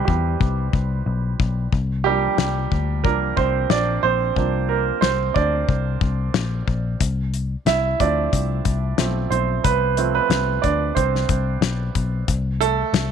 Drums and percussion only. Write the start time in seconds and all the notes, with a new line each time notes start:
0.08 kick
0.41 kick
0.73 kick
1.40 kick
1.73 kick
2.38 snare
2.72 kick
3.05 kick
3.37 kick
3.70 snare
4.36 kick
5.02 snare
5.36 kick
5.69 kick
6.01 kick
6.34 snare
6.68 kick
7.00 kick, closed hi-hat
7.34 closed hi-hat
7.66 snare, closed hi-hat
8.00 kick, closed hi-hat
8.33 kick, closed hi-hat
8.65 kick, closed hi-hat
8.98 snare, closed hi-hat
9.32 closed hi-hat
9.64 kick, closed hi-hat
9.97 closed hi-hat
10.30 snare, closed hi-hat
10.64 kick, closed hi-hat
10.97 kick, closed hi-hat
11.16 snare
11.29 kick, closed hi-hat
11.62 snare, closed hi-hat
11.95 kick, closed hi-hat
12.28 kick, closed hi-hat
12.61 closed hi-hat
12.94 snare, closed hi-hat